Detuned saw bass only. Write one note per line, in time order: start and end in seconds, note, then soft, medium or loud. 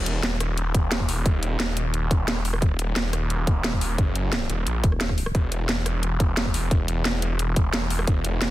0.00 1.24 D#1 loud
1.26 2.61 D#1 loud
2.62 3.97 D#1 loud
3.98 4.48 F#1 loud
4.50 4.65 D#1 loud
4.67 4.82 A#1 loud
5.35 6.70 E1 loud
6.71 8.06 E1 loud
8.07 8.50 E1 loud